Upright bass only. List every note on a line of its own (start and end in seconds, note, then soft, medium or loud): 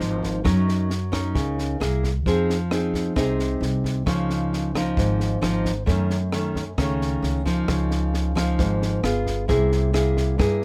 0.00 0.47 G#1 medium
0.45 1.32 F#2 loud
1.36 1.77 C#2 medium
1.81 2.26 C2 medium
2.26 3.12 F2 loud
3.16 3.58 C2 medium
3.61 4.07 C2 medium
4.07 4.93 C#2 loud
4.97 5.39 G#1 medium
5.42 5.89 G#1 medium
5.87 6.74 F#2 medium
6.78 7.20 C#2 medium
7.22 7.65 C#2 medium
7.68 8.54 C#2 loud
8.59 9.01 G#1 medium
9.03 9.51 G1 medium
9.49 10.35 C2 loud
10.39 10.64 G2 medium